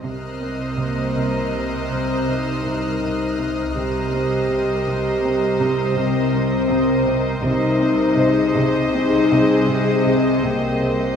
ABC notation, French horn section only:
X:1
M:5/4
L:1/8
Q:1/4=81
K:Cm
V:1 name="French horn section"
z2 B,2 C2 E4 | G6 C4 | E4 E2 C2 B,2 |]